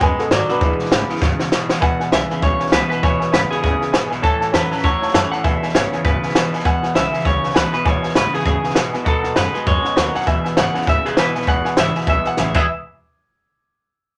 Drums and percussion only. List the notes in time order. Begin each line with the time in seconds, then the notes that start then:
0.01 kick, snare
0.19 snare
0.31 snare, hi-hat pedal
0.49 snare
0.61 kick, snare
0.79 snare
0.85 snare
0.92 snare, hi-hat pedal
1.09 snare
1.16 snare
1.22 kick, snare
1.40 snare
1.52 snare, hi-hat pedal
1.69 snare
1.82 kick, snare
2.00 snare
2.12 snare, hi-hat pedal
2.30 snare
2.42 kick, snare
2.60 snare
2.66 snare
2.72 snare, hi-hat pedal
2.91 snare
3.03 kick, snare
3.21 snare
3.33 snare, hi-hat pedal
3.52 snare
3.64 kick, snare
3.81 snare
3.94 snare, hi-hat pedal
4.11 snare
4.24 kick, snare
4.41 snare
4.54 snare, hi-hat pedal
4.71 snare
4.78 snare
4.84 kick, snare
5.02 snare
5.08 snare
5.14 snare, hi-hat pedal
5.32 snare
5.44 kick, snare
5.63 snare
5.69 snare
5.75 snare, hi-hat pedal
5.92 snare
6.05 kick, snare
6.23 snare
6.29 snare
6.35 snare, hi-hat pedal
6.53 snare
6.59 snare
6.65 kick, snare
6.83 snare
6.95 snare, hi-hat pedal
7.13 snare
7.19 snare
7.25 kick, snare
7.43 snare
7.50 snare
7.56 snare, hi-hat pedal
7.73 snare
7.86 kick, snare
8.03 snare
8.09 snare
8.15 snare, hi-hat pedal
8.33 snare
8.39 snare
8.45 kick, snare
8.63 snare
8.70 snare
8.75 snare, hi-hat pedal
8.94 snare
9.06 kick, snare
9.24 snare
9.36 snare, hi-hat pedal
9.54 snare
9.67 kick, snare
9.84 snare
9.97 snare, hi-hat pedal
10.14 snare
10.21 snare
10.27 kick, snare
10.45 snare
10.57 snare, hi-hat pedal
10.74 snare
10.81 snare
10.87 kick, snare
11.05 snare
11.17 snare, hi-hat pedal
11.35 snare
11.41 snare
11.47 kick, snare
11.65 snare
11.77 snare, hi-hat pedal
11.95 snare
12.01 snare
12.07 kick, snare
12.24 snare
12.37 snare, hi-hat pedal
12.54 kick, crash